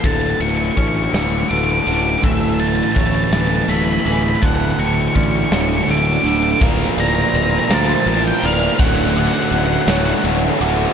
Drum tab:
RD |xxxxxx|xxxxxx|------|xxxxxx|
SD |---o--|---o--|---o--|---o--|
BD |o-o---|o-o---|o-o---|o-----|

RD |xxxxxx|
SD |---o--|
BD |o-----|